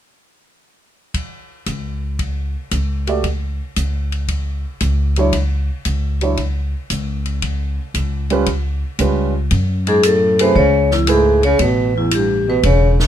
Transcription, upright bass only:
1.66 2.54 C#2 medium
2.71 3.59 C#2 medium
3.77 4.64 C#2 medium
4.81 5.69 C#2 medium
5.85 6.73 C#2 medium
6.90 7.78 C#2 medium
7.94 8.82 C#2 medium
8.99 9.47 C#2 medium
9.51 10.52 F#2 medium
10.56 11.56 C#2 medium
11.59 12.60 A1 medium
12.63 13.07 E1 medium

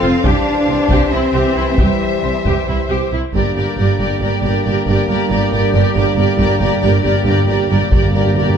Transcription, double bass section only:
0.03 0.11 F1 soft
0.24 0.32 C2 medium
0.68 0.76 C2 soft
0.90 0.98 C2 soft
1.11 1.19 C2 soft
1.33 1.41 C2 soft
1.56 1.64 C2 soft
1.78 1.86 C2 soft
2.23 2.31 C2 soft
2.45 2.53 C2 soft
2.68 2.76 C2 soft
2.90 2.98 C2 soft
3.12 3.20 C2 soft
3.34 3.42 G1 soft
3.56 3.64 G1 soft
3.78 3.86 G1 soft
4.00 4.08 G1 soft
4.21 4.29 G1 soft
4.43 4.51 G1 soft
4.66 4.74 G1 soft
4.87 4.95 G1 medium
5.09 5.17 G1 soft
5.31 5.39 G1 medium
5.53 5.61 G1 soft
5.74 5.82 G1 medium
5.96 6.04 G1 soft
6.17 6.25 G1 medium
6.38 6.46 G1 medium
6.61 6.69 G1 medium
6.83 6.91 G1 medium
7.04 7.12 G1 soft
7.26 7.34 G1 soft
7.48 7.56 G1 soft
7.70 7.78 G1 soft
7.92 8.00 G1 soft
8.14 8.22 G1 soft
8.37 8.45 G1 soft

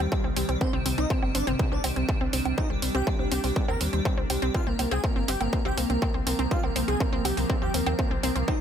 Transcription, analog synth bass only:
0.24 0.32 C2 medium
0.36 0.44 C2 loud
0.49 0.56 C2 medium
0.73 0.81 C2 medium
0.86 0.93 C2 loud
0.98 1.06 C2 medium
1.22 1.30 G1 medium
1.35 1.43 G1 loud
1.47 1.55 G1 medium
1.72 1.79 C2 medium
1.84 1.92 C2 loud
1.96 2.04 C2 medium
2.21 2.29 C2 medium
2.33 2.41 C2 loud
2.46 2.53 C2 medium
2.70 2.78 C2 medium
2.82 2.90 C2 loud
2.95 3.02 C2 medium
3.19 3.27 C2 medium
3.32 3.39 C2 loud
3.44 3.52 C2 medium
3.68 3.76 D#2 medium
3.81 3.88 D#2 loud
3.93 4.01 D#2 medium
4.18 4.25 C2 medium
4.30 4.38 C2 loud
4.42 4.50 C2 medium
4.67 4.75 C2 medium
4.79 4.87 C2 loud
4.91 4.99 C2 medium
5.16 5.24 G1 medium
5.28 5.36 G1 loud
5.41 5.48 G1 medium
5.65 5.73 C2 medium
5.77 5.85 C2 loud
5.90 5.97 C2 loud
6.14 6.22 C2 medium
6.27 6.34 C2 loud
6.39 6.47 C2 medium
6.63 6.71 C2 medium
6.76 6.84 C2 loud
6.88 6.96 C2 medium
7.13 7.20 C2 medium
7.25 7.33 C2 loud
7.37 7.45 C2 medium
7.62 7.70 D#2 medium
7.74 7.82 D#2 loud
7.86 7.94 D#2 medium
8.11 8.19 C2 medium
8.23 8.31 C2 loud
8.36 8.43 C2 medium

